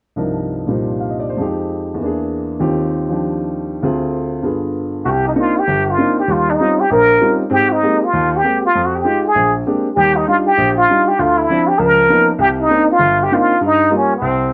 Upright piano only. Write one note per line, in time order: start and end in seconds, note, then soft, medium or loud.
0.16 1.38 C2 soft
0.16 1.39 G2 soft
0.16 1.36 F3 soft
0.16 1.39 D4 soft
0.16 0.67 D#4 soft
0.16 1.39 A#4 soft
0.67 1.39 A#2 soft
0.67 1.39 G3 soft
0.67 1.39 D#4 soft
0.67 1.40 F4 soft
0.67 1.28 C5 soft
0.99 1.14 F5 soft
1.10 1.27 D#5 soft
1.20 1.34 D5 soft
1.29 1.44 C5 soft
1.37 1.99 F2 soft
1.37 1.99 F3 soft
1.37 2.00 G#3 soft
1.37 2.01 D#4 soft
1.42 2.01 G4 medium
1.94 2.58 E2 soft
1.94 2.60 E3 soft
2.01 2.61 A#3 soft
2.01 2.63 D4 soft
2.06 2.64 G#4 medium
2.60 3.83 D#2 medium
2.60 3.83 D#3 soft
2.60 3.82 C4 soft
2.60 3.82 F4 soft
2.60 3.11 G4 medium
3.09 3.82 F3 soft
3.09 3.83 D4 soft
3.09 3.84 G4 soft
3.83 4.44 D2 medium
3.83 4.42 D3 soft
3.83 4.45 C4 soft
3.83 4.43 F4 medium
3.83 4.43 G#4 medium
4.43 5.05 G2 soft
4.43 5.05 D3 soft
4.43 5.05 B3 soft
4.43 5.06 F4 soft
4.43 5.06 G#4 medium
5.05 5.32 C2 medium
5.35 5.57 A#3 soft
5.35 5.57 C4 soft
5.35 5.57 D4 soft
5.35 5.57 D#4 medium
5.68 5.94 G1 medium
5.97 6.18 A#3 medium
5.97 6.18 C4 soft
5.97 6.19 D4 soft
5.97 6.19 D#4 medium
6.28 6.55 D#2 medium
6.28 6.55 G3 medium
6.60 6.80 G3 medium
6.60 6.80 C4 soft
6.60 6.80 C#4 soft
6.60 6.80 D#4 soft
6.60 6.80 F4 medium
6.91 7.17 A#1 medium
7.21 7.41 G3 medium
7.21 7.41 C4 soft
7.21 7.41 C#4 soft
7.21 7.42 D#4 soft
7.21 7.41 F4 medium
7.50 7.77 G#2 medium
7.50 7.77 C4 medium
7.83 8.03 G#3 medium
7.83 8.03 A#3 soft
7.83 8.03 C4 soft
7.83 8.03 G4 medium
8.13 8.39 D#2 medium
8.44 8.64 G#3 soft
8.44 8.64 A#3 soft
8.44 8.64 C4 soft
8.44 8.64 G4 medium
8.75 9.01 F2 medium
9.04 9.25 G#3 medium
9.04 9.25 D#4 soft
9.04 9.25 F4 medium
9.35 9.61 A#1 medium
9.66 9.86 G#3 medium
9.66 9.86 A#3 soft
9.66 9.86 C4 soft
9.66 9.86 D4 soft
9.66 9.86 G4 medium
9.96 10.22 D#2 medium
9.96 10.22 G3 medium
10.27 10.47 G3 soft
10.27 10.47 D4 soft
10.27 10.47 D#4 soft
10.27 10.48 F4 medium
10.58 10.84 A#1 medium
10.90 11.09 G3 medium
10.90 11.09 D4 soft
10.90 11.09 D#4 soft
10.90 11.09 F4 medium
11.19 11.45 D2 medium
11.19 11.45 D3 medium
11.50 11.69 F3 soft
11.50 11.70 C4 soft
11.50 11.70 D4 medium
11.79 12.05 C#2 medium
11.79 12.05 F3 medium
12.09 12.29 F3 medium
12.09 12.30 A#3 soft
12.09 12.30 B3 soft
12.09 12.30 C#4 soft
12.09 12.30 D#4 medium
12.39 12.65 C2 medium
12.39 12.66 C3 medium
12.70 12.90 A#3 soft
12.70 12.91 C4 soft
12.70 12.91 D4 soft
12.70 12.91 D#4 medium
12.99 13.26 G1 medium
13.31 13.52 A#3 medium
13.31 13.51 C4 soft
13.31 13.52 D4 soft
13.31 13.52 D#4 medium
13.61 13.87 G2 medium
13.90 14.11 G3 soft
13.90 14.12 A#3 soft
13.90 14.12 F4 medium
14.22 14.48 C2 medium